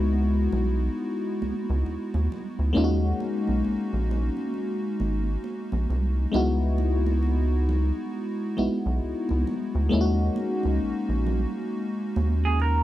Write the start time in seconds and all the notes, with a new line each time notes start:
Already playing: C#2 G#3 B3 D#4 E4 F#4
0.52 B1, muted conga, low conga
1.42 C#2, muted conga, high conga
1.70 C#2
1.86 D#2, muted conga
2.14 D#2, high conga
2.32 muted conga, low conga
2.59 D2
2.73 D#2 G#3 A#3 C#4 D#4, muted conga, low conga
2.78 F4
2.84 F#4
3.20 high conga
3.47 B1, high conga
3.65 A#1, muted conga
3.93 A#1
4.11 muted conga, low conga
4.37 high conga
4.54 muted conga
5.00 G#1, high conga
5.44 muted conga
5.72 A#1, high conga
5.90 C2, low conga
6.32 C#2 G#3 B3 D#4 E4, muted conga, low conga
6.36 F#4
6.78 muted conga, high conga
7.06 high conga
7.23 muted conga
7.69 muted conga, low conga
8.57 B1 G#3 B3 D#4 E4 F#4, muted conga, high conga
8.86 B1
9.04 C#2
9.29 C#2, high conga
9.47 muted conga, low conga
9.75 D2
9.89 D#2 G#3 A#3 C#4 D#4, low conga
9.94 E4
10.01 F#4
10.36 high conga
10.63 C#2, high conga
10.82 A#1
11.09 A#1
11.27 low conga
12.16 D#2, high conga
12.45 G#4
12.60 A#4, muted conga